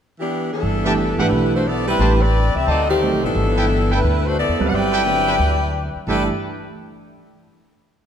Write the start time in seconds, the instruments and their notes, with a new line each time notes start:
0.20 saxophone section E3 B3 D4 G4
0.53 saxophone section E3 B3 D4 A4
0.63 upright bass G1
0.84 grand piano E3 A3 D4 G4, trumpet section G4 B4 E5 A5
1.18 upright bass G#1, grand piano E3 A3 D4 G4, saxophone section A3 D4 E4 B4, trumpet section G4 B4 E5 F#5
1.31 upright bass B1
1.55 saxophone section A3 D4 F#4 C5
1.67 saxophone section B3 E4 A4 D5
1.88 saxophone section G3 C4 E4 B4
1.99 upright bass A1, grand piano E3 A3 D4 G4, trumpet section G4 B4 C5 A5
2.22 saxophone section C4 G4 B4 D5
2.55 upright bass C2, saxophone section C4 G4 B4 E5
2.67 upright bass D2, saxophone section C4 F#4 A4 D#5, trumpet section D#4 C5 D5 A5
2.89 saxophone section D#3 A3 C4 G4
3.02 grand piano F#3 A3 C4 D#4
3.13 upright bass C2
3.23 upright bass G#1, saxophone section E3 B3 D4 A4
3.35 upright bass G1
3.57 trumpet section E4 A4 B4 G5
3.91 saxophone section A3 D4 E4 B4, trumpet section E4 A4 B4 G5
4.03 upright bass D2
4.26 saxophone section A3 D4 F#4 C5
4.39 saxophone section B3 E4 A4 D5
4.49 upright bass E2
4.59 upright bass D2, grand piano F#3 G3 C4 B4
4.68 upright bass G1, saxophone section F#5
4.74 saxophone section E4 B4 D5 G5
4.93 trumpet section E4 A4 B4 G5
5.05 grand piano D3 F#3 G3 C4
5.27 trumpet section E4 A4 B4 G5
5.39 upright bass D2
5.95 muted upright bass stroke
6.07 upright bass G1, grand piano E3 A3 D4 G4, trumpet section E4 A4 B4 G5, saxophone section A4 B4 D5 E5